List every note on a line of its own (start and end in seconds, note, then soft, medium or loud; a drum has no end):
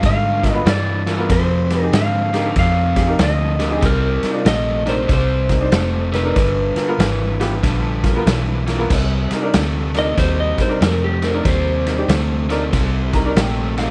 0.02 0.61 G2 medium
0.02 0.64 G#2 medium
0.02 0.61 D3 medium
0.02 kick loud
0.02 snare soft
0.02 ride medium
0.06 0.50 F5 medium
0.42 0.48 F4 soft
0.42 0.49 A#4 soft
0.42 kick medium
0.42 snare soft
0.42 ride medium
0.50 0.65 B3 medium
0.50 0.64 D#5 medium
0.55 0.66 F4 medium
0.55 0.66 B4 medium
0.65 1.27 G2 medium
0.65 1.02 G2 medium
0.65 1.02 E3 medium
0.65 1.31 D5 medium
0.65 snare loud
0.65 ride medium
1.06 1.27 G2 medium
1.06 1.27 E3 medium
1.06 1.12 F4 soft
1.06 1.12 A#4 soft
1.06 snare soft
1.06 ride medium
1.18 1.29 B3 medium
1.18 1.30 F4 medium
1.18 1.30 A#4 medium
1.29 1.88 F2 medium
1.29 1.91 F2 medium
1.29 1.88 C3 medium
1.29 1.81 C5 medium
1.29 kick loud
1.29 snare soft
1.29 ride medium
1.70 1.76 G4 soft
1.70 1.76 G#4 soft
1.70 snare soft
1.70 ride medium
1.81 1.93 D#4 medium
1.81 1.93 G4 medium
1.81 1.94 G#4 medium
1.81 1.96 A#4 medium
1.93 2.29 F2 medium
1.93 2.54 G#2 medium
1.93 2.29 D3 medium
1.93 2.58 F5 medium
1.93 snare loud
1.93 ride medium
2.33 2.54 F2 medium
2.33 2.54 D3 medium
2.33 2.45 D#4 medium
2.33 2.45 G4 medium
2.33 2.45 A#4 medium
2.33 snare soft
2.33 ride medium
2.56 3.17 F2 medium
2.56 3.15 F2 medium
2.56 3.15 C3 medium
2.56 3.23 F5 loud
2.56 kick loud
2.56 snare soft
2.56 ride medium
2.96 3.02 G4 soft
2.96 3.03 G#4 soft
2.96 kick medium
2.96 snare soft
2.96 ride medium
3.07 3.19 D#4 medium
3.07 3.19 G4 medium
3.07 3.20 A#4 medium
3.19 3.80 D2 medium
3.19 3.56 F2 medium
3.19 3.56 D3 medium
3.19 3.86 D#5 medium
3.19 snare loud
3.19 ride medium
3.59 3.80 F2 medium
3.59 3.80 D3 medium
3.59 3.65 G4 soft
3.59 3.66 A#4 soft
3.59 snare soft
3.59 ride medium
3.70 3.82 D#4 medium
3.70 3.83 G4 medium
3.70 3.83 G#4 medium
3.81 4.20 C2 medium
3.81 4.41 C3 medium
3.81 4.41 G3 medium
3.81 kick loud
3.81 snare soft
3.81 ride medium
3.86 4.43 A#4 medium
4.22 4.28 D#4 soft
4.22 4.29 A#4 soft
4.22 snare soft
4.22 ride medium
4.33 4.45 D4 medium
4.33 4.46 D#4 medium
4.33 4.46 F4 medium
4.45 5.07 A#1 medium
4.45 4.82 C3 medium
4.45 4.82 A3 loud
4.45 4.88 D#5 medium
4.45 snare loud
4.45 ride medium
4.85 5.07 C3 medium
4.85 5.07 A3 medium
4.85 4.97 D4 medium
4.85 4.98 D#4 medium
4.85 4.98 A#4 medium
4.85 5.11 C5 medium
4.85 snare soft
4.85 ride medium
5.08 5.71 C2 medium
5.08 5.68 C3 medium
5.08 5.68 G3 medium
5.08 kick loud
5.08 snare soft
5.08 ride medium
5.13 6.14 C5 medium
5.49 5.55 D#4 soft
5.49 5.56 A#4 soft
5.49 kick medium
5.49 snare soft
5.49 ride medium
5.61 5.72 D4 medium
5.61 5.73 D#4 medium
5.61 5.73 C5 medium
5.72 6.34 F1 medium
5.72 6.08 C3 medium
5.72 6.09 A3 medium
5.72 snare loud
5.72 ride medium
6.12 6.33 C3 medium
6.12 6.34 A3 medium
6.12 6.18 D#4 soft
6.12 6.19 A#4 soft
6.12 8.24 B4 medium
6.12 snare soft
6.12 ride medium
6.24 6.36 D4 medium
6.24 6.36 D#4 medium
6.24 6.36 A#4 medium
6.35 6.74 G1 medium
6.35 6.95 G2 medium
6.35 6.95 D3 medium
6.35 kick loud
6.35 snare soft
6.35 ride medium
6.76 6.82 F4 soft
6.76 6.83 A#4 soft
6.76 muted fingered electric bass stroke soft
6.76 snare soft
6.76 ride medium
6.88 7.00 B3 medium
6.88 7.00 F4 medium
6.88 7.00 A#4 medium
6.98 7.61 G#1 medium
6.98 7.36 G2 medium
6.98 7.36 E3 medium
6.98 snare loud
6.98 ride medium
7.40 7.61 G2 medium
7.40 7.61 E3 medium
7.40 7.51 B3 medium
7.40 7.52 F4 medium
7.40 7.52 G4 medium
7.40 snare soft
7.40 ride medium
7.63 8.25 A#1 medium
7.63 8.22 G2 medium
7.63 8.22 D3 medium
7.63 kick loud
7.63 snare soft
7.63 ride medium
8.03 8.09 F4 medium
8.03 8.10 A#4 medium
8.03 kick medium
8.03 snare soft
8.03 ride medium
8.15 8.27 B3 medium
8.15 8.27 F4 medium
8.15 8.27 A#4 medium
8.26 8.88 B1 medium
8.26 8.63 G2 medium
8.26 8.63 E3 medium
8.26 snare loud
8.26 ride medium
8.66 8.88 G2 medium
8.66 8.88 E3 medium
8.66 8.73 F4 soft
8.66 8.73 A#4 soft
8.66 snare soft
8.66 ride medium
8.78 8.90 B3 medium
8.78 8.90 F4 medium
8.78 8.91 A#4 medium
8.90 9.28 C2 medium
8.90 9.49 C3 medium
8.90 9.49 G3 medium
8.90 kick loud
8.90 snare soft
8.90 crash loud
9.31 9.37 D#4 soft
9.31 9.37 A#4 medium
9.31 snare soft
9.31 ride medium
9.42 9.54 D4 medium
9.42 9.54 D#4 medium
9.42 9.54 A#4 medium
9.54 10.16 D2 medium
9.54 9.90 C3 medium
9.54 9.91 A3 medium
9.54 snare loud
9.54 ride medium
9.94 10.15 C3 medium
9.94 10.16 A3 medium
9.94 10.06 D4 medium
9.94 10.06 D#4 medium
9.94 10.07 A#4 medium
9.94 snare soft
9.94 ride medium
9.99 10.18 D#5 medium
10.17 10.55 D#2 medium
10.17 10.77 C3 medium
10.17 10.77 G3 medium
10.17 10.39 C5 medium
10.17 kick loud
10.17 snare soft
10.17 ride medium
10.40 10.60 D#5 medium
10.58 10.64 D#4 soft
10.58 10.65 A#4 soft
10.58 10.82 C5 medium
10.58 muted fingered electric bass stroke soft
10.58 kick medium
10.58 snare soft
10.58 ride medium
10.69 10.81 D4 medium
10.69 10.81 D#4 medium
10.69 10.82 A#4 medium
10.81 11.43 F2 medium
10.81 11.18 C3 medium
10.81 11.18 A3 medium
10.81 11.02 A#4 medium
10.81 snare loud
10.81 ride medium
11.04 11.24 G4 medium
11.21 11.43 C3 medium
11.21 11.43 A3 medium
11.21 11.27 D#4 soft
11.21 11.45 A#4 medium
11.21 11.28 C5 soft
11.21 snare soft
11.21 ride medium
11.34 11.45 D4 medium
11.34 11.45 D#4 medium
11.34 11.46 A#4 medium
11.45 12.07 D#2 medium
11.45 12.04 C3 medium
11.45 12.05 G3 medium
11.45 13.33 C5 medium
11.45 kick loud
11.45 snare soft
11.45 ride medium
11.86 11.92 D#4 soft
11.86 11.93 A#4 soft
11.86 snare soft
11.86 ride medium
11.97 12.09 D4 medium
11.97 12.09 D#4 medium
11.97 12.10 G4 medium
12.08 12.71 D2 medium
12.08 12.45 C3 medium
12.08 12.46 A3 medium
12.08 snare loud
12.08 ride medium
12.49 12.70 C3 medium
12.49 12.70 A3 medium
12.49 12.62 D4 medium
12.49 12.62 D#4 medium
12.49 12.62 A#4 medium
12.49 snare soft
12.49 ride medium
12.72 13.35 C2 medium
12.72 13.32 C3 medium
12.72 13.32 G3 medium
12.72 kick loud
12.72 snare soft
12.72 ride medium
13.13 13.19 D#4 soft
13.13 13.20 A#4 medium
13.13 13.36 A#5 medium
13.13 kick medium
13.13 snare soft
13.13 ride medium
13.25 13.37 D4 medium
13.25 13.37 D#4 medium
13.25 13.38 A#4 medium
13.36 13.91 A#1 medium
13.36 13.73 C3 medium
13.36 13.73 A3 medium
13.36 13.75 G5 medium
13.36 snare loud
13.36 ride medium
13.77 13.91 C3 medium
13.77 13.91 A3 medium
13.77 13.83 D#4 soft
13.77 13.84 A#4 soft
13.77 13.91 F5 medium
13.77 snare soft
13.77 ride medium